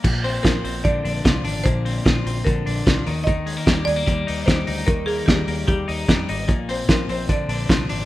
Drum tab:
CC |x-------|--------|--------|--------|
HH |-oxoxoxo|xoxoxoxo|xoxoxoxo|xoxoxoxo|
SD |--o---o-|--o---o-|--o---o-|--o---o-|
BD |o-o-o-o-|o-o-o-o-|o-o-o-o-|o-o-o-o-|

CC |--------|
HH |xoxoxoxo|
SD |--o---o-|
BD |o-o-o-o-|